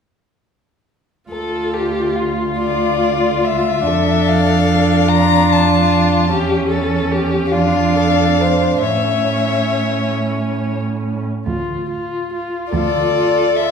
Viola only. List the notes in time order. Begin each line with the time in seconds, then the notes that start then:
1.30 F4
3.85 D4
6.32 C#4
7.52 D4
8.82 C#4
11.46 F4
11.89 F4
12.32 F4
12.75 F4
13.16 F4
13.58 F4